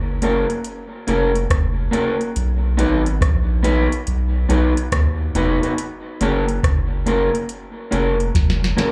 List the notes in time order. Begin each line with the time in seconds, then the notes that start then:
Already playing: F#1
0.22 A#3 C#4 F#4 A#4, closed hi-hat
0.50 closed hi-hat
0.64 closed hi-hat
1.07 F1 A#3 C#4 F#4 A#4, closed hi-hat
1.35 closed hi-hat
1.50 F1, kick, cross-stick, closed hi-hat
1.91 A#3 C#4 F#4 A#4, closed hi-hat
2.21 closed hi-hat
2.36 B1, closed hi-hat
2.77 G#1 B3 D#4 F#4 B4, closed hi-hat
3.06 closed hi-hat
3.21 A#1, kick, cross-stick, closed hi-hat
3.63 B3 D#4 F#4 B4, closed hi-hat
3.92 closed hi-hat
4.07 B1, closed hi-hat
4.49 B1 B3 D#4 F#4 B4, closed hi-hat
4.77 closed hi-hat
4.92 D#2, kick, cross-stick, closed hi-hat
5.35 F1 B3 D#4 F#4 B4, closed hi-hat
5.63 B3 D#4 F#4 B4, closed hi-hat
5.78 closed hi-hat
6.21 F#1 A#3 C#4 F#4 A#4, closed hi-hat
6.49 closed hi-hat
6.63 F#1, kick, cross-stick, closed hi-hat
7.06 A#3 C#4 F#4 A#4, closed hi-hat
7.35 closed hi-hat
7.49 closed hi-hat
7.91 F1 A#3 C#4 F#4 A#4, closed hi-hat
8.20 closed hi-hat
8.35 F1, kick, snare, closed hi-hat
8.50 snare
8.64 snare
8.77 A#3 C#4 F#4 A#4, snare, closed hi-hat